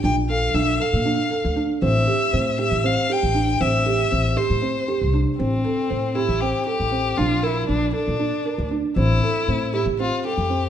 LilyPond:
<<
  \new Staff \with { instrumentName = "Violin" } { \time 7/8 \key a \phrygian \tempo 4 = 118 g''8 f''8 e''8 f''4. r8 | e''4. e''8 f''8 g''4 | e''4. c''4. r8 | c'4. e'8 g'8 g'4 |
f'8 e'8 d'8 d'4. r8 | e'4. e'8 f'8 g'4 | }
  \new Staff \with { instrumentName = "Felt piano" } { \time 7/8 \key a \phrygian d'8 a'8 d'8 a'8 d'8 a'8 d'8 | c'8 g'8 c'8 g'8 c'8 g'8 d'8 | c'8 g'8 c'8 g'8 c'8 g'8 d'8 | c'8 a'8 c'8 g'8 c'8 a'8 c'8 |
d'8 bes'8 d'8 a'8 d'8 bes'8 d'8 | c'8 a'8 c'8 g'8 c'8 a'8 c'8 | }
  \new Staff \with { instrumentName = "Upright bass" } { \clef bass \time 7/8 \key a \phrygian bes,,4 bes,,8 r16 bes,8 r8 d,8 r16 | a,,8 r8 a,8. a,,8 r8 a,,8. | a,,4 a,,8 r16 a,8 r8 c,8 r16 | a,,8 r8 a,8. a,,8 r8 a,,8. |
bes,,4 bes,,8 r16 bes,8 r8 d,8 r16 | a,,8 r8 a,8. a,,8 r8 f,8. | }
>>